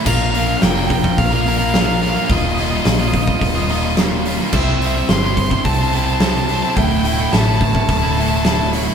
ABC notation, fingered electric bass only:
X:1
M:4/4
L:1/8
Q:1/4=107
K:Dm
V:1 name="Fingered electric bass" clef=bass
B,,,2 F,,,2 B,,,4 | _E,,,2 B,,,2 E,,,4 | C,,2 G,,,2 C,,4 | D,,,2 A,,,2 D,,,4 |]